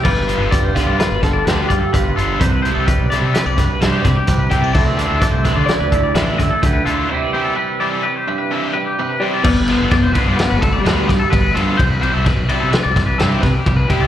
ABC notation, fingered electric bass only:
X:1
M:5/4
L:1/16
Q:1/4=128
K:C
V:1 name="Fingered electric bass" clef=bass
G,,,3 G,,, z F,,, z G,, z G,,,3 D,,2 G,, z G,,,2 G,,,2 | C,,3 C,, z B,,, z C, z C,,3 G,,2 C, z C,,2 C,,2 | D,,3 D,, z C,, z D, z D,,3 A,,,2 D, z D,,2 D,,2 | z16 z4 |
G,,,3 G,,, z F,,, z G,, z G,,,3 D,,2 G,, z G,,,2 G,,2 | C,,3 C,, z B,,, z C, z C,,3 G,,2 C, z C,,2 C,,2 |]